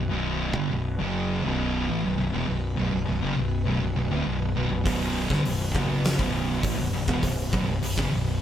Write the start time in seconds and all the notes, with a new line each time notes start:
Already playing: F#2 B3 F#4 B4
0.09 B0 B1 F#2 B2
0.54 G1 G2 D3
0.70 B0 B1 F#2
0.98 F#1 F#2 C#3 F#3
1.43 B0 B1 F#2 B2
1.87 A1 A2 E3
2.03 B0 B1 F#2
2.18 B0 B1 F#2
2.32 E1 E2 B2
2.47 B0 B1 F#2
2.76 B0 B1 F#2
2.91 B0 B1 F#2
3.06 B0 B1 F#2
3.21 F#1 F#2 C#3
3.36 B0 B1 F#2
3.65 B0 B1 F#2
3.81 B0 B1 F#2
3.96 B0 B1 F#2
4.11 D1 D2 A2
4.26 B0 B1 F#2
4.56 B0 B1 F#2
4.70 B0 B1 F#2
4.85 B0 B1 F#2 B2, kick, open hi-hat
5.30 G1 G2 D3, kick, snare
5.45 B0 B1 F#2, open hi-hat
5.74 F#1 F#2 C#3 F#3, kick
6.04 snare, open hi-hat
6.18 B0 B1 F#2 B2, kick
6.63 A1 A2 E3, kick, open hi-hat
6.78 B0 B1 F#2
6.93 B0 B1 F#2
7.07 E1 E2 B2, kick
7.22 B0 B1 F#2, kick, open hi-hat
7.52 B0 B1 F#2, kick
7.66 B0 B1 F#2
7.82 B0 B1 F#2, open hi-hat
7.97 F#1 F#2 C#3, kick
8.12 B0 B1 F#2